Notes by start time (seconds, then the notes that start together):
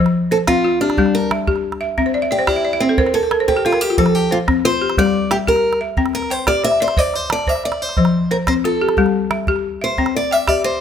Already playing: F3
0.00 C5
0.06 calabash click
0.31 A4 C5
0.47 C4 F4, calabash thump, calabash click
0.64 F4
0.81 D4 G4
0.90 calabash click
0.97 G3 G4, calabash thump
1.06 calabash click
1.15 A#4
1.31 E5, calabash click
1.47 G4, calabash thump
1.56 calabash click
1.72 calabash click
1.81 E5
1.98 C4 E5, calabash thump, calabash click
2.06 C5
2.14 D5
2.22 E5
2.31 G4 D5
2.39 C5
2.47 E4 G4 D5, calabash thump, calabash click
2.56 E5
2.65 D5
2.73 E5
2.80 C4 C5
2.89 A4
2.98 A#4 C5, calabash thump
3.06 C5, calabash click
3.14 A4 A#4
3.23 A4
3.31 A#4, calabash click
3.40 C5
3.48 G4 A4 C5, calabash thump
3.56 G4, calabash click
3.65 F4 A4
3.73 A#4, calabash click
3.81 G4
3.90 F4
3.98 F3 A4 C5, calabash thump, calabash click
4.06 calabash click
4.15 G4
4.31 F4 C5
4.48 C4, calabash thump, calabash click
4.65 F4 C5
4.82 G4
4.90 calabash click
4.97 G3 G4 D5, calabash thump
5.06 calabash click
5.31 G4 E5, calabash click
5.47 G4 A#4, calabash thump
5.56 calabash click
5.73 calabash click
5.81 E5
5.97 C4 G5, calabash thump
6.06 calabash click
6.13 A#4, calabash click
6.22 calabash click
6.30 C5 G5
6.47 G4 D5, calabash thump, calabash click
6.64 C5 E5, calabash click
6.71 calabash click
6.80 C5 D5
6.88 calabash click
6.97 C5 D5, calabash thump
7.14 C5, calabash click
7.30 D5 A5, calabash click
7.39 calabash click
7.47 C5 E5, calabash thump
7.55 calabash click
7.64 D5, calabash click
7.72 calabash click
7.82 C5
7.89 calabash click
7.97 F3 C5, calabash thump, calabash click
8.05 calabash click
8.31 A#4 C5
8.47 C4 C5, calabash thump, calabash click
8.64 F4 A4
8.81 G4
8.89 calabash click
8.97 G3 G4, calabash thump
9.06 calabash click
9.31 E5, calabash click
9.47 G4, calabash thump
9.56 calabash click
9.82 C5 E5
9.98 C4 G5, calabash thump, calabash click
10.06 calabash click
10.16 D5
10.31 E5 G5
10.48 G4 D5, calabash thump, calabash click
10.64 C5